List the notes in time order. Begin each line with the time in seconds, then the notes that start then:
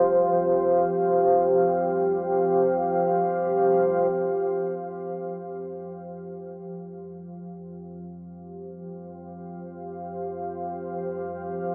Already playing: F2 F3 G4 C5 F5
4.12 F2 F3 G4
4.82 F5
6.13 C5